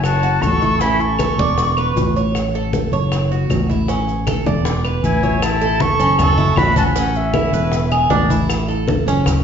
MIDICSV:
0, 0, Header, 1, 6, 480
1, 0, Start_track
1, 0, Key_signature, 3, "major"
1, 0, Tempo, 384123
1, 1012, Time_signature, 4, 2, 24, 8
1, 11794, End_track
2, 0, Start_track
2, 0, Title_t, "Flute"
2, 0, Program_c, 0, 73
2, 44, Note_on_c, 0, 81, 103
2, 520, Note_on_c, 0, 85, 104
2, 539, Note_off_c, 0, 81, 0
2, 1008, Note_on_c, 0, 83, 93
2, 1027, Note_off_c, 0, 85, 0
2, 1250, Note_on_c, 0, 85, 103
2, 1269, Note_off_c, 0, 83, 0
2, 2693, Note_off_c, 0, 85, 0
2, 6282, Note_on_c, 0, 80, 96
2, 6777, Note_on_c, 0, 81, 101
2, 6796, Note_off_c, 0, 80, 0
2, 7254, Note_on_c, 0, 85, 114
2, 7273, Note_off_c, 0, 81, 0
2, 7721, Note_off_c, 0, 85, 0
2, 7729, Note_on_c, 0, 85, 108
2, 8209, Note_on_c, 0, 83, 106
2, 8228, Note_off_c, 0, 85, 0
2, 8452, Note_off_c, 0, 83, 0
2, 8461, Note_on_c, 0, 81, 102
2, 8536, Note_off_c, 0, 81, 0
2, 8694, Note_on_c, 0, 78, 90
2, 8950, Note_on_c, 0, 76, 87
2, 8968, Note_off_c, 0, 78, 0
2, 9902, Note_off_c, 0, 76, 0
2, 11794, End_track
3, 0, Start_track
3, 0, Title_t, "Cuban tres"
3, 0, Program_c, 1, 25
3, 0, Note_on_c, 1, 73, 73
3, 274, Note_off_c, 1, 73, 0
3, 287, Note_on_c, 1, 66, 78
3, 755, Note_off_c, 1, 66, 0
3, 774, Note_on_c, 1, 64, 65
3, 1006, Note_off_c, 1, 64, 0
3, 1017, Note_on_c, 1, 61, 76
3, 1481, Note_off_c, 1, 61, 0
3, 1501, Note_on_c, 1, 69, 62
3, 1730, Note_off_c, 1, 69, 0
3, 1742, Note_on_c, 1, 74, 75
3, 2204, Note_off_c, 1, 74, 0
3, 2219, Note_on_c, 1, 71, 77
3, 2683, Note_off_c, 1, 71, 0
3, 2704, Note_on_c, 1, 73, 61
3, 3165, Note_off_c, 1, 73, 0
3, 3187, Note_on_c, 1, 69, 72
3, 3647, Note_off_c, 1, 69, 0
3, 3659, Note_on_c, 1, 73, 76
3, 4123, Note_off_c, 1, 73, 0
3, 4143, Note_on_c, 1, 66, 66
3, 4605, Note_off_c, 1, 66, 0
3, 4619, Note_on_c, 1, 64, 69
3, 4851, Note_off_c, 1, 64, 0
3, 4859, Note_on_c, 1, 61, 75
3, 5323, Note_off_c, 1, 61, 0
3, 5332, Note_on_c, 1, 69, 70
3, 5567, Note_off_c, 1, 69, 0
3, 5582, Note_on_c, 1, 74, 70
3, 6045, Note_off_c, 1, 74, 0
3, 6057, Note_on_c, 1, 71, 75
3, 6522, Note_off_c, 1, 71, 0
3, 6539, Note_on_c, 1, 73, 64
3, 6770, Note_off_c, 1, 73, 0
3, 7015, Note_on_c, 1, 69, 87
3, 7481, Note_off_c, 1, 69, 0
3, 7493, Note_on_c, 1, 61, 86
3, 7959, Note_off_c, 1, 61, 0
3, 7967, Note_on_c, 1, 64, 78
3, 8436, Note_off_c, 1, 64, 0
3, 8450, Note_on_c, 1, 61, 87
3, 8685, Note_off_c, 1, 61, 0
3, 8698, Note_on_c, 1, 61, 85
3, 9161, Note_off_c, 1, 61, 0
3, 9174, Note_on_c, 1, 64, 76
3, 9407, Note_off_c, 1, 64, 0
3, 9415, Note_on_c, 1, 71, 80
3, 9880, Note_off_c, 1, 71, 0
3, 9890, Note_on_c, 1, 68, 84
3, 10125, Note_off_c, 1, 68, 0
3, 10126, Note_on_c, 1, 62, 83
3, 10362, Note_off_c, 1, 62, 0
3, 10376, Note_on_c, 1, 64, 72
3, 10841, Note_off_c, 1, 64, 0
3, 10851, Note_on_c, 1, 69, 73
3, 11318, Note_off_c, 1, 69, 0
3, 11343, Note_on_c, 1, 61, 103
3, 11794, Note_off_c, 1, 61, 0
3, 11794, End_track
4, 0, Start_track
4, 0, Title_t, "Trumpet"
4, 0, Program_c, 2, 56
4, 56, Note_on_c, 2, 66, 90
4, 515, Note_on_c, 2, 69, 95
4, 534, Note_off_c, 2, 66, 0
4, 1010, Note_on_c, 2, 64, 97
4, 1028, Note_off_c, 2, 69, 0
4, 1257, Note_on_c, 2, 69, 79
4, 1276, Note_off_c, 2, 64, 0
4, 1976, Note_off_c, 2, 69, 0
4, 6296, Note_on_c, 2, 64, 91
4, 6780, Note_off_c, 2, 64, 0
4, 6780, Note_on_c, 2, 64, 90
4, 7276, Note_on_c, 2, 69, 100
4, 7295, Note_off_c, 2, 64, 0
4, 7746, Note_off_c, 2, 69, 0
4, 7751, Note_on_c, 2, 69, 91
4, 8220, Note_on_c, 2, 66, 89
4, 8238, Note_off_c, 2, 69, 0
4, 8451, Note_off_c, 2, 66, 0
4, 8458, Note_on_c, 2, 66, 78
4, 8565, Note_off_c, 2, 66, 0
4, 8697, Note_on_c, 2, 61, 80
4, 8936, Note_off_c, 2, 61, 0
4, 8936, Note_on_c, 2, 61, 73
4, 9895, Note_off_c, 2, 61, 0
4, 11794, End_track
5, 0, Start_track
5, 0, Title_t, "Fretless electric bass"
5, 0, Program_c, 3, 35
5, 0, Note_on_c, 3, 30, 96
5, 480, Note_off_c, 3, 30, 0
5, 528, Note_on_c, 3, 33, 88
5, 1657, Note_off_c, 3, 33, 0
5, 1728, Note_on_c, 3, 28, 95
5, 2402, Note_off_c, 3, 28, 0
5, 2449, Note_on_c, 3, 33, 90
5, 3579, Note_off_c, 3, 33, 0
5, 3646, Note_on_c, 3, 30, 87
5, 4321, Note_off_c, 3, 30, 0
5, 4376, Note_on_c, 3, 33, 86
5, 5502, Note_off_c, 3, 33, 0
5, 5579, Note_on_c, 3, 28, 89
5, 6247, Note_off_c, 3, 28, 0
5, 6295, Note_on_c, 3, 33, 85
5, 7421, Note_off_c, 3, 33, 0
5, 7493, Note_on_c, 3, 30, 96
5, 8164, Note_off_c, 3, 30, 0
5, 8204, Note_on_c, 3, 33, 85
5, 9335, Note_off_c, 3, 33, 0
5, 9408, Note_on_c, 3, 28, 84
5, 10081, Note_off_c, 3, 28, 0
5, 10128, Note_on_c, 3, 33, 92
5, 11257, Note_off_c, 3, 33, 0
5, 11328, Note_on_c, 3, 30, 92
5, 11794, Note_off_c, 3, 30, 0
5, 11794, End_track
6, 0, Start_track
6, 0, Title_t, "Drums"
6, 45, Note_on_c, 9, 60, 67
6, 52, Note_on_c, 9, 75, 59
6, 53, Note_on_c, 9, 63, 37
6, 59, Note_on_c, 9, 70, 73
6, 170, Note_off_c, 9, 60, 0
6, 177, Note_off_c, 9, 75, 0
6, 178, Note_off_c, 9, 63, 0
6, 184, Note_off_c, 9, 70, 0
6, 288, Note_on_c, 9, 63, 32
6, 297, Note_on_c, 9, 70, 30
6, 413, Note_off_c, 9, 63, 0
6, 422, Note_off_c, 9, 70, 0
6, 520, Note_on_c, 9, 60, 36
6, 520, Note_on_c, 9, 61, 77
6, 530, Note_on_c, 9, 75, 60
6, 537, Note_on_c, 9, 63, 80
6, 537, Note_on_c, 9, 70, 71
6, 645, Note_off_c, 9, 60, 0
6, 645, Note_off_c, 9, 61, 0
6, 655, Note_off_c, 9, 75, 0
6, 662, Note_off_c, 9, 63, 0
6, 662, Note_off_c, 9, 70, 0
6, 762, Note_on_c, 9, 60, 30
6, 776, Note_on_c, 9, 63, 80
6, 779, Note_on_c, 9, 70, 29
6, 887, Note_off_c, 9, 60, 0
6, 901, Note_off_c, 9, 63, 0
6, 904, Note_off_c, 9, 70, 0
6, 1007, Note_on_c, 9, 70, 74
6, 1010, Note_on_c, 9, 60, 69
6, 1020, Note_on_c, 9, 63, 34
6, 1132, Note_off_c, 9, 70, 0
6, 1135, Note_off_c, 9, 60, 0
6, 1145, Note_off_c, 9, 63, 0
6, 1252, Note_on_c, 9, 60, 31
6, 1255, Note_on_c, 9, 70, 28
6, 1259, Note_on_c, 9, 63, 37
6, 1377, Note_off_c, 9, 60, 0
6, 1380, Note_off_c, 9, 70, 0
6, 1384, Note_off_c, 9, 63, 0
6, 1483, Note_on_c, 9, 75, 65
6, 1490, Note_on_c, 9, 60, 59
6, 1491, Note_on_c, 9, 70, 65
6, 1495, Note_on_c, 9, 63, 83
6, 1608, Note_off_c, 9, 75, 0
6, 1615, Note_off_c, 9, 60, 0
6, 1616, Note_off_c, 9, 70, 0
6, 1620, Note_off_c, 9, 63, 0
6, 1730, Note_on_c, 9, 70, 28
6, 1733, Note_on_c, 9, 60, 29
6, 1741, Note_on_c, 9, 63, 103
6, 1855, Note_off_c, 9, 70, 0
6, 1858, Note_off_c, 9, 60, 0
6, 1866, Note_off_c, 9, 63, 0
6, 1970, Note_on_c, 9, 60, 69
6, 1977, Note_on_c, 9, 70, 81
6, 1993, Note_on_c, 9, 63, 35
6, 2095, Note_off_c, 9, 60, 0
6, 2102, Note_off_c, 9, 70, 0
6, 2118, Note_off_c, 9, 63, 0
6, 2211, Note_on_c, 9, 75, 63
6, 2223, Note_on_c, 9, 70, 30
6, 2224, Note_on_c, 9, 63, 30
6, 2336, Note_off_c, 9, 75, 0
6, 2348, Note_off_c, 9, 70, 0
6, 2349, Note_off_c, 9, 63, 0
6, 2460, Note_on_c, 9, 60, 30
6, 2460, Note_on_c, 9, 61, 78
6, 2461, Note_on_c, 9, 70, 77
6, 2464, Note_on_c, 9, 63, 84
6, 2585, Note_off_c, 9, 60, 0
6, 2585, Note_off_c, 9, 61, 0
6, 2586, Note_off_c, 9, 70, 0
6, 2589, Note_off_c, 9, 63, 0
6, 2702, Note_on_c, 9, 60, 28
6, 2712, Note_on_c, 9, 70, 30
6, 2826, Note_off_c, 9, 60, 0
6, 2837, Note_off_c, 9, 70, 0
6, 2935, Note_on_c, 9, 75, 68
6, 2937, Note_on_c, 9, 60, 61
6, 2944, Note_on_c, 9, 63, 37
6, 2948, Note_on_c, 9, 70, 73
6, 3060, Note_off_c, 9, 75, 0
6, 3062, Note_off_c, 9, 60, 0
6, 3069, Note_off_c, 9, 63, 0
6, 3073, Note_off_c, 9, 70, 0
6, 3173, Note_on_c, 9, 60, 34
6, 3180, Note_on_c, 9, 63, 32
6, 3187, Note_on_c, 9, 70, 32
6, 3298, Note_off_c, 9, 60, 0
6, 3305, Note_off_c, 9, 63, 0
6, 3312, Note_off_c, 9, 70, 0
6, 3413, Note_on_c, 9, 63, 80
6, 3417, Note_on_c, 9, 60, 55
6, 3421, Note_on_c, 9, 70, 65
6, 3538, Note_off_c, 9, 63, 0
6, 3541, Note_off_c, 9, 60, 0
6, 3546, Note_off_c, 9, 70, 0
6, 3655, Note_on_c, 9, 63, 40
6, 3661, Note_on_c, 9, 70, 32
6, 3665, Note_on_c, 9, 60, 34
6, 3780, Note_off_c, 9, 63, 0
6, 3786, Note_off_c, 9, 70, 0
6, 3790, Note_off_c, 9, 60, 0
6, 3895, Note_on_c, 9, 75, 66
6, 3896, Note_on_c, 9, 60, 68
6, 3904, Note_on_c, 9, 70, 78
6, 3908, Note_on_c, 9, 63, 31
6, 4020, Note_off_c, 9, 75, 0
6, 4021, Note_off_c, 9, 60, 0
6, 4029, Note_off_c, 9, 70, 0
6, 4033, Note_off_c, 9, 63, 0
6, 4142, Note_on_c, 9, 63, 31
6, 4153, Note_on_c, 9, 70, 31
6, 4267, Note_off_c, 9, 63, 0
6, 4278, Note_off_c, 9, 70, 0
6, 4371, Note_on_c, 9, 63, 85
6, 4376, Note_on_c, 9, 75, 62
6, 4378, Note_on_c, 9, 60, 34
6, 4378, Note_on_c, 9, 61, 80
6, 4379, Note_on_c, 9, 70, 73
6, 4496, Note_off_c, 9, 63, 0
6, 4501, Note_off_c, 9, 75, 0
6, 4503, Note_off_c, 9, 60, 0
6, 4503, Note_off_c, 9, 61, 0
6, 4504, Note_off_c, 9, 70, 0
6, 4617, Note_on_c, 9, 63, 78
6, 4623, Note_on_c, 9, 60, 26
6, 4631, Note_on_c, 9, 70, 32
6, 4742, Note_off_c, 9, 63, 0
6, 4748, Note_off_c, 9, 60, 0
6, 4756, Note_off_c, 9, 70, 0
6, 4852, Note_on_c, 9, 60, 60
6, 4858, Note_on_c, 9, 63, 35
6, 4863, Note_on_c, 9, 70, 74
6, 4977, Note_off_c, 9, 60, 0
6, 4983, Note_off_c, 9, 63, 0
6, 4988, Note_off_c, 9, 70, 0
6, 5096, Note_on_c, 9, 60, 34
6, 5102, Note_on_c, 9, 63, 37
6, 5105, Note_on_c, 9, 70, 30
6, 5221, Note_off_c, 9, 60, 0
6, 5227, Note_off_c, 9, 63, 0
6, 5230, Note_off_c, 9, 70, 0
6, 5333, Note_on_c, 9, 75, 65
6, 5337, Note_on_c, 9, 70, 67
6, 5341, Note_on_c, 9, 60, 57
6, 5341, Note_on_c, 9, 63, 91
6, 5458, Note_off_c, 9, 75, 0
6, 5462, Note_off_c, 9, 70, 0
6, 5466, Note_off_c, 9, 60, 0
6, 5466, Note_off_c, 9, 63, 0
6, 5579, Note_on_c, 9, 63, 98
6, 5582, Note_on_c, 9, 60, 30
6, 5583, Note_on_c, 9, 70, 31
6, 5704, Note_off_c, 9, 63, 0
6, 5707, Note_off_c, 9, 60, 0
6, 5708, Note_off_c, 9, 70, 0
6, 5812, Note_on_c, 9, 60, 108
6, 5823, Note_on_c, 9, 70, 76
6, 5826, Note_on_c, 9, 63, 37
6, 5937, Note_off_c, 9, 60, 0
6, 5948, Note_off_c, 9, 70, 0
6, 5951, Note_off_c, 9, 63, 0
6, 6055, Note_on_c, 9, 75, 68
6, 6061, Note_on_c, 9, 63, 34
6, 6065, Note_on_c, 9, 70, 30
6, 6180, Note_off_c, 9, 75, 0
6, 6186, Note_off_c, 9, 63, 0
6, 6190, Note_off_c, 9, 70, 0
6, 6297, Note_on_c, 9, 63, 75
6, 6299, Note_on_c, 9, 70, 69
6, 6422, Note_off_c, 9, 63, 0
6, 6424, Note_off_c, 9, 70, 0
6, 6537, Note_on_c, 9, 63, 60
6, 6538, Note_on_c, 9, 61, 67
6, 6544, Note_on_c, 9, 70, 33
6, 6662, Note_off_c, 9, 61, 0
6, 6662, Note_off_c, 9, 63, 0
6, 6669, Note_off_c, 9, 70, 0
6, 6778, Note_on_c, 9, 75, 72
6, 6779, Note_on_c, 9, 60, 74
6, 6781, Note_on_c, 9, 70, 93
6, 6903, Note_off_c, 9, 75, 0
6, 6904, Note_off_c, 9, 60, 0
6, 6906, Note_off_c, 9, 70, 0
6, 7021, Note_on_c, 9, 70, 34
6, 7025, Note_on_c, 9, 63, 39
6, 7146, Note_off_c, 9, 70, 0
6, 7150, Note_off_c, 9, 63, 0
6, 7250, Note_on_c, 9, 63, 105
6, 7253, Note_on_c, 9, 70, 31
6, 7257, Note_on_c, 9, 60, 58
6, 7375, Note_off_c, 9, 63, 0
6, 7378, Note_off_c, 9, 70, 0
6, 7382, Note_off_c, 9, 60, 0
6, 7496, Note_on_c, 9, 70, 67
6, 7500, Note_on_c, 9, 63, 39
6, 7621, Note_off_c, 9, 70, 0
6, 7625, Note_off_c, 9, 63, 0
6, 7731, Note_on_c, 9, 75, 58
6, 7733, Note_on_c, 9, 60, 71
6, 7735, Note_on_c, 9, 70, 92
6, 7742, Note_on_c, 9, 63, 37
6, 7742, Note_on_c, 9, 64, 92
6, 7856, Note_off_c, 9, 75, 0
6, 7858, Note_off_c, 9, 60, 0
6, 7860, Note_off_c, 9, 70, 0
6, 7867, Note_off_c, 9, 63, 0
6, 7867, Note_off_c, 9, 64, 0
6, 7983, Note_on_c, 9, 63, 33
6, 7983, Note_on_c, 9, 64, 64
6, 7988, Note_on_c, 9, 70, 34
6, 8108, Note_off_c, 9, 63, 0
6, 8108, Note_off_c, 9, 64, 0
6, 8113, Note_off_c, 9, 70, 0
6, 8200, Note_on_c, 9, 75, 61
6, 8215, Note_on_c, 9, 60, 74
6, 8215, Note_on_c, 9, 61, 95
6, 8215, Note_on_c, 9, 63, 86
6, 8228, Note_on_c, 9, 70, 35
6, 8325, Note_off_c, 9, 75, 0
6, 8340, Note_off_c, 9, 60, 0
6, 8340, Note_off_c, 9, 61, 0
6, 8340, Note_off_c, 9, 63, 0
6, 8353, Note_off_c, 9, 70, 0
6, 8448, Note_on_c, 9, 63, 84
6, 8461, Note_on_c, 9, 70, 80
6, 8573, Note_off_c, 9, 63, 0
6, 8585, Note_off_c, 9, 70, 0
6, 8692, Note_on_c, 9, 60, 70
6, 8693, Note_on_c, 9, 70, 96
6, 8697, Note_on_c, 9, 63, 37
6, 8817, Note_off_c, 9, 60, 0
6, 8818, Note_off_c, 9, 70, 0
6, 8822, Note_off_c, 9, 63, 0
6, 8929, Note_on_c, 9, 63, 36
6, 8942, Note_on_c, 9, 70, 34
6, 9053, Note_off_c, 9, 63, 0
6, 9067, Note_off_c, 9, 70, 0
6, 9167, Note_on_c, 9, 63, 86
6, 9167, Note_on_c, 9, 75, 68
6, 9169, Note_on_c, 9, 60, 65
6, 9172, Note_on_c, 9, 70, 30
6, 9292, Note_off_c, 9, 63, 0
6, 9292, Note_off_c, 9, 75, 0
6, 9294, Note_off_c, 9, 60, 0
6, 9297, Note_off_c, 9, 70, 0
6, 9410, Note_on_c, 9, 60, 35
6, 9415, Note_on_c, 9, 70, 75
6, 9418, Note_on_c, 9, 63, 38
6, 9535, Note_off_c, 9, 60, 0
6, 9540, Note_off_c, 9, 70, 0
6, 9543, Note_off_c, 9, 63, 0
6, 9643, Note_on_c, 9, 60, 69
6, 9653, Note_on_c, 9, 70, 102
6, 9655, Note_on_c, 9, 63, 38
6, 9767, Note_off_c, 9, 60, 0
6, 9778, Note_off_c, 9, 70, 0
6, 9780, Note_off_c, 9, 63, 0
6, 9887, Note_on_c, 9, 63, 31
6, 9891, Note_on_c, 9, 60, 37
6, 9895, Note_on_c, 9, 75, 72
6, 9896, Note_on_c, 9, 70, 30
6, 10012, Note_off_c, 9, 63, 0
6, 10016, Note_off_c, 9, 60, 0
6, 10020, Note_off_c, 9, 75, 0
6, 10021, Note_off_c, 9, 70, 0
6, 10124, Note_on_c, 9, 60, 70
6, 10124, Note_on_c, 9, 61, 83
6, 10127, Note_on_c, 9, 63, 78
6, 10137, Note_on_c, 9, 70, 31
6, 10249, Note_off_c, 9, 60, 0
6, 10249, Note_off_c, 9, 61, 0
6, 10252, Note_off_c, 9, 63, 0
6, 10262, Note_off_c, 9, 70, 0
6, 10370, Note_on_c, 9, 63, 80
6, 10373, Note_on_c, 9, 60, 30
6, 10385, Note_on_c, 9, 70, 75
6, 10495, Note_off_c, 9, 63, 0
6, 10498, Note_off_c, 9, 60, 0
6, 10510, Note_off_c, 9, 70, 0
6, 10615, Note_on_c, 9, 60, 66
6, 10617, Note_on_c, 9, 75, 78
6, 10620, Note_on_c, 9, 63, 36
6, 10621, Note_on_c, 9, 70, 98
6, 10740, Note_off_c, 9, 60, 0
6, 10742, Note_off_c, 9, 75, 0
6, 10745, Note_off_c, 9, 63, 0
6, 10746, Note_off_c, 9, 70, 0
6, 10864, Note_on_c, 9, 63, 37
6, 10876, Note_on_c, 9, 70, 29
6, 10989, Note_off_c, 9, 63, 0
6, 11001, Note_off_c, 9, 70, 0
6, 11091, Note_on_c, 9, 60, 64
6, 11102, Note_on_c, 9, 63, 102
6, 11111, Note_on_c, 9, 70, 32
6, 11216, Note_off_c, 9, 60, 0
6, 11227, Note_off_c, 9, 63, 0
6, 11236, Note_off_c, 9, 70, 0
6, 11346, Note_on_c, 9, 63, 36
6, 11349, Note_on_c, 9, 70, 76
6, 11471, Note_off_c, 9, 63, 0
6, 11474, Note_off_c, 9, 70, 0
6, 11571, Note_on_c, 9, 60, 72
6, 11576, Note_on_c, 9, 75, 65
6, 11582, Note_on_c, 9, 63, 37
6, 11582, Note_on_c, 9, 64, 93
6, 11586, Note_on_c, 9, 70, 106
6, 11696, Note_off_c, 9, 60, 0
6, 11701, Note_off_c, 9, 75, 0
6, 11707, Note_off_c, 9, 63, 0
6, 11707, Note_off_c, 9, 64, 0
6, 11711, Note_off_c, 9, 70, 0
6, 11794, End_track
0, 0, End_of_file